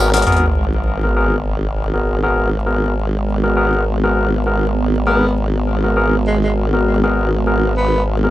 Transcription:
0.00 0.25 G#1 medium
0.00 0.23 G#3 medium
0.00 0.23 F#4 medium
0.00 0.23 A#4 medium
0.00 0.26 C#5 loud
0.13 0.24 B3 medium
0.13 0.24 F#4 medium
0.13 0.24 G#4 medium
0.13 0.24 A#4 medium
0.13 closed hi-hat medium
0.13 tambourine soft
0.17 closed hi-hat medium
0.22 closed hi-hat soft
0.26 8.30 G#1 medium
0.26 8.30 G#3 medium
0.26 8.30 B3 medium
0.26 0.45 B3 medium
0.26 8.30 F#4 medium
0.26 0.45 F#4 medium
0.26 0.45 G#4 medium
0.26 0.45 A#4 medium
0.26 8.30 A#4 medium
0.26 closed hi-hat soft
0.26 sub drop medium
0.32 closed hi-hat soft
0.37 closed hi-hat soft
1.04 1.15 B3 medium
1.04 1.15 F#4 medium
1.04 1.15 G#4 medium
1.04 1.15 A#4 medium
1.17 1.35 B3 medium
1.17 1.35 F#4 medium
1.17 1.35 G#4 medium
1.17 1.35 A#4 medium
1.94 2.20 B3 medium
1.94 2.20 F#4 medium
1.94 2.20 G#4 medium
1.94 2.20 A#4 medium
2.23 2.49 B3 medium
2.23 2.49 F#4 medium
2.23 2.49 G#4 medium
2.23 2.49 A#4 medium
2.66 2.93 B3 medium
2.66 2.93 F#4 medium
2.66 2.93 G#4 medium
2.66 2.93 A#4 medium
3.43 3.55 B3 medium
3.43 3.55 F#4 medium
3.43 3.55 G#4 medium
3.43 3.55 A#4 medium
3.57 3.83 B3 medium
3.57 3.83 F#4 medium
3.57 3.83 G#4 medium
3.57 3.83 A#4 medium
4.04 4.29 B3 medium
4.04 4.29 F#4 medium
4.04 4.29 G#4 medium
4.04 4.29 A#4 medium
4.46 4.65 B3 medium
4.46 4.65 F#4 medium
4.46 4.65 G#4 medium
4.46 4.65 A#4 medium
5.07 5.25 B3 medium
5.07 5.32 B3 medium
5.07 5.25 F#4 medium
5.07 5.25 G#4 medium
5.07 5.25 A#4 loud
5.84 5.95 B3 medium
5.84 5.95 F#4 medium
5.84 5.95 G#4 medium
5.84 5.95 A#4 medium
5.97 6.15 B3 medium
5.97 6.15 F#4 medium
5.97 6.15 G#4 medium
5.97 6.15 A#4 medium
6.27 6.38 G#3 medium
6.44 6.52 G#3 medium
6.73 7.00 B3 medium
6.73 7.00 F#4 medium
6.73 6.99 G#4 medium
6.73 6.99 A#4 medium
7.03 7.29 B3 medium
7.03 7.29 F#4 medium
7.03 7.29 G#4 medium
7.03 7.29 A#4 medium
7.47 7.73 B3 medium
7.47 7.73 F#4 medium
7.47 7.73 G#4 medium
7.47 7.74 A#4 medium
7.77 8.03 B3 medium
8.24 8.30 B3 medium
8.24 8.30 F#4 medium
8.24 8.30 G#4 medium
8.24 8.30 A#4 medium

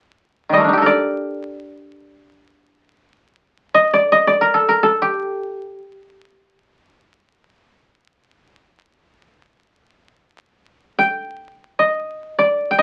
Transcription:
0.49 0.70 D#3 soft
0.49 0.84 G3 soft
0.54 0.88 A3 soft
0.54 0.92 D#5 medium
0.60 0.84 A#3 soft
0.64 3.07 D4 soft
0.69 0.92 D#4 soft
0.73 2.77 G4 medium
0.78 2.68 A4 medium
0.82 2.66 A#4 medium
0.86 3.71 D5 medium
3.74 4.00 D#5 medium
3.94 4.18 D5 medium
4.12 4.33 D#5 medium
4.27 5.87 D5 medium
4.41 4.60 A#4 medium
4.54 4.75 A4 medium
4.69 4.89 A#4 medium
4.83 6.73 A4 medium
5.02 8.36 G4 medium
10.99 12.33 G5 loud
11.79 12.45 D#5 medium
12.39 12.82 D5 medium
12.71 12.82 G5 medium
12.78 12.82 D#5 medium

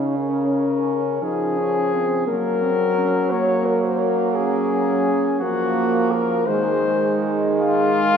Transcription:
0.00 1.18 C#3 medium
0.00 0.17 C#4 medium
0.00 0.18 D#4 medium
0.16 1.24 C#4 medium
0.16 3.01 C#4 medium
0.16 1.25 A#4 medium
1.22 2.25 F3 medium
1.22 1.60 D#4 medium
1.22 2.27 G#4 medium
1.59 1.95 C#4 medium
1.94 2.28 C4 medium
2.27 5.11 F#3 medium
2.27 2.64 A#3 medium
2.27 3.33 A#4 loud
2.62 2.97 C4 medium
2.98 3.34 C#4 medium
3.30 5.37 A#3 medium
3.30 4.10 A#3 medium
3.30 3.68 C#5 medium
3.66 3.82 A#4 medium
3.83 4.01 C5 medium
4.00 4.37 A#4 medium
4.36 5.44 C#4 medium
4.36 5.40 G#4 medium
5.41 6.49 F3 medium
5.41 6.50 A#3 medium
5.41 6.47 A#3 medium
5.41 6.13 F#4 medium
6.12 6.49 A#4 medium
6.47 8.17 D#3 medium
6.47 8.17 G#3 medium
6.47 7.32 C5 loud
7.59 8.17 F4 loud

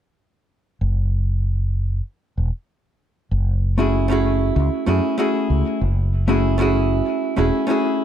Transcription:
0.81 2.00 F#1 medium
2.38 2.49 E1 medium
3.31 4.50 F#1 medium
3.78 4.06 A3 medium
3.78 4.06 C#4 medium
3.78 4.06 E4 medium
3.78 4.07 F#4 medium
3.78 4.07 G#4 medium
4.08 4.83 A3 medium
4.08 4.84 C#4 medium
4.08 4.84 E4 medium
4.08 4.85 F#4 medium
4.12 4.85 G#4 medium
4.56 4.68 C#2 loud
4.86 4.99 F#2 medium
4.86 5.15 A3 medium
4.86 5.15 C#4 medium
4.86 5.15 E4 medium
4.86 5.16 F#4 medium
4.86 5.16 G#4 medium
5.18 5.79 A3 medium
5.18 5.79 C#4 medium
5.18 5.79 E4 medium
5.18 5.80 F#4 medium
5.18 5.80 G#4 medium
5.50 5.62 C#2 medium
5.81 7.00 F#1 medium
6.28 6.56 A3 medium
6.28 6.56 C#4 medium
6.28 6.56 E4 medium
6.28 6.56 F#4 medium
6.28 6.57 G#4 medium
6.58 7.33 A3 medium
6.58 7.33 C#4 medium
6.58 7.34 E4 medium
6.58 7.34 F#4 medium
6.62 7.35 G#4 medium
7.36 7.50 E1 medium
7.36 7.65 A3 medium
7.36 7.65 C#4 medium
7.36 7.65 E4 medium
7.36 7.66 F#4 medium
7.36 7.66 G#4 medium
7.67 8.04 A3 medium
7.67 8.04 C#4 medium
7.67 8.04 E4 medium
7.67 8.04 F#4 medium
7.71 8.04 G#4 medium

